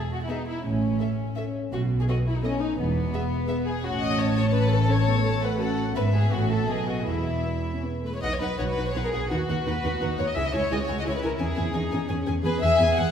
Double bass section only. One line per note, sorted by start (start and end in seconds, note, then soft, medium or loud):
0.65 0.94 A1 medium
1.72 2.02 B1 medium
2.79 3.08 E1 medium
3.83 5.92 A1 medium
5.96 6.29 G#1 soft
6.32 6.68 A1 soft
6.69 7.06 B1 soft
7.07 8.04 E1 soft
8.23 8.30 B1 medium
8.41 8.49 B1 medium
8.60 8.67 B1 medium
8.77 8.84 B1 medium
8.95 9.03 B1 medium
9.14 9.21 B1 medium
9.31 9.38 D#2 medium
9.49 9.56 D#2 medium
9.66 9.73 D#2 medium
9.84 9.91 D#2 medium
10.01 10.08 D#2 medium
10.18 10.25 D#2 medium
10.36 10.43 C#2 medium
10.54 10.61 C#2 medium
10.71 10.78 C#2 medium
10.89 10.96 C#2 medium
11.05 11.12 C#2 medium
11.23 11.30 C#2 medium
11.40 11.47 E2 medium
11.58 11.65 E2 medium
11.75 11.82 E2 medium
11.92 11.99 E2 medium
12.09 12.16 E2 medium
12.27 12.34 E2 medium
12.44 12.51 E2 medium
12.62 12.69 E2 medium
12.79 12.86 E2 medium
12.97 13.05 E2 medium